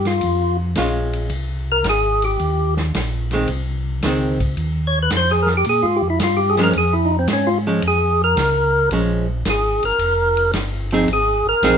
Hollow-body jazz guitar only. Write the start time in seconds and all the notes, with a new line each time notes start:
0.77 G#3 C#4 F4
3.33 D#3 G#3 C4
4.04 D#3 G#3 C4
6.59 F3 G#3 C#4
7.67 F3 G#3 C#4
8.92 F3 G#3 C#4
10.92 F3 C4 D#4 G#4
11.63 F3 C4 D#4 G#4